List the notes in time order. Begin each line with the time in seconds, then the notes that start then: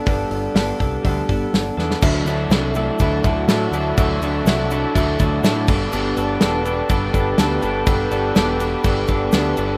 0.06 G1 G3 B3 D4 A4, kick, open hi-hat
0.30 G1 B3 D4 A4, open hi-hat
0.55 G1 G3 B3 D4 A4, snare, open hi-hat
0.80 C2 B3 D4 A4, kick, open hi-hat
1.05 D2 G3 B3 D4 A4, kick, open hi-hat
1.29 G1 B3 D4 A4, kick, open hi-hat
1.53 G1, snare, open hi-hat
1.77 E2 B3 D4 A4, snare
1.91 snare
2.02 D2 D3 F#3 A3 D4 E4 F#4 A4 E5 A5 D6, kick, crash, shaker
2.25 D2 D3 F#3 A3 D4 E4 A4, crash, shaker
2.49 C2 D3 F#3 A3 D4 E4 A4, snare, crash, shaker
2.75 D3 F#3 A3 D4 E4 A4, crash, shaker
2.99 D2 D3 F#3 A3 D4 E4 A4, kick, crash, shaker
3.24 D2 D3 F#3 A3 D4 E4 A4, kick, crash, shaker
3.48 A2 D3 F#3 A3 D4 E4 A4, snare, crash, shaker
3.71 D2 D3 F#3 A3 D4 E4 A4, crash, shaker
3.97 D2 D3 F#3 A3 D4 E4 A4, kick, crash, shaker
4.21 D2 D3 F#3 A3 D4 E4 A4, crash, shaker
4.45 C2 D3 F#3 A3 D4 E4 A4, snare, crash, shaker
4.71 D3 F#3 A3 D4 E4 A4, crash, shaker
4.94 D2 D3 F#3 A3 D4 E4 A4, kick, crash, shaker
5.19 D2 D3 F#3 A3 D4 E4 A4, kick, crash, shaker
5.42 A2 D3 F#3 A3 D4 E4 A4, snare, crash, shaker
5.67 G1 G3 B3 D4 G4 A4 B4, kick, crash, shaker
5.92 G1 G3 B3 D4 A4, crash, shaker
6.16 G1 G3 B3 D4 A4, crash, shaker
6.41 E1 G3 B3 D4 A4, snare, crash, shaker
6.65 G3 B3 D4 A4, crash, shaker
6.89 G1 G3 B3 D4 A4, kick, crash, shaker
7.13 G1 G3 B3 D4 A4, kick, crash, shaker
7.38 D2 G3 B3 D4 A4, snare, crash, shaker
7.61 G1 G3 B3 D4 A4, crash, shaker
7.86 G1 G3 B3 D4 A4, kick, crash, shaker
8.10 G1 G3 B3 D4 A4, crash, shaker
8.35 E1 G3 B3 D4 A4, snare, crash, shaker
8.59 G3 B3 D4 A4, crash, shaker
8.84 G1 G3 B3 D4 A4, kick, crash, shaker
9.07 G1 G3 B3 D4 A4, kick, crash, shaker
9.32 D2 G3 B3 D4 A4, snare, crash, shaker
9.57 G1 G3 B3 D4 A4, crash, shaker